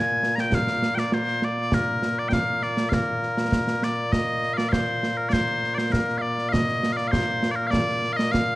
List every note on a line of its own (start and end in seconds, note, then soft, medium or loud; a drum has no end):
0.00 8.55 A#2 medium
0.00 8.55 A#3 medium
0.00 0.35 G#5 loud
0.23 snare medium
0.35 0.40 A#5 loud
0.35 snare medium
0.40 0.54 G5 loud
0.52 0.95 F5 loud
0.52 concert bass drum medium
0.52 snare medium
0.67 snare medium
0.82 snare medium
0.95 1.13 D5 medium
0.95 0.99 G5 medium
0.95 snare medium
1.12 1.44 C5 loud
1.12 snare loud
1.27 snare soft
1.42 1.74 D5 loud
1.42 snare medium
1.57 snare soft
1.72 2.19 A#4 medium
1.72 concert bass drum medium
1.72 snare medium
2.03 snare medium
2.19 2.29 D5 medium
2.29 2.33 G5 loud
2.29 concert bass drum medium
2.29 snare medium
2.33 2.63 F5 loud
2.63 2.89 D5 medium
2.63 snare soft
2.77 snare medium
2.89 2.94 F5 medium
2.89 concert bass drum medium
2.89 snare medium
2.94 3.84 A#4 medium
3.23 snare soft
3.37 snare medium
3.52 concert bass drum medium
3.52 snare loud
3.67 snare medium
3.82 4.12 D5 medium
3.82 snare medium
4.12 4.54 D#5 loud
4.12 concert bass drum medium
4.12 snare medium
4.43 snare soft
4.54 4.69 D5 loud
4.54 4.57 F5 loud
4.58 snare medium
4.69 5.17 C5 medium
4.69 4.72 F5 medium
4.69 concert bass drum medium
4.69 snare medium
5.03 snare medium
5.17 5.29 A#4 medium
5.29 5.74 C5 loud
5.29 5.32 D5 loud
5.33 concert bass drum medium
5.33 snare loud
5.63 snare soft
5.74 5.92 C5 medium
5.74 5.78 D5 medium
5.74 snare medium
5.92 6.18 A#4 medium
5.92 concert bass drum medium
5.92 snare medium
6.09 snare soft
6.18 6.49 D5 medium
6.18 6.22 F5 medium
6.38 snare soft
6.49 6.93 D#5 loud
6.49 6.52 F5 loud
6.53 concert bass drum medium
6.53 snare loud
6.69 snare soft
6.84 snare medium
6.93 6.97 F5 medium
6.97 7.08 D5 medium
6.97 snare soft
7.08 7.51 C5 loud
7.08 7.12 F5 loud
7.13 concert bass drum medium
7.13 snare loud
7.43 snare medium
7.51 7.56 D5 medium
7.56 7.67 A#4 medium
7.67 8.13 D5 loud
7.67 7.71 F5 loud
7.73 concert bass drum medium
7.73 snare loud
7.89 snare soft
8.04 snare soft
8.13 8.31 D#5 loud
8.13 8.16 F5 loud
8.19 snare medium
8.31 8.55 F5 loud
8.31 concert bass drum medium
8.31 snare loud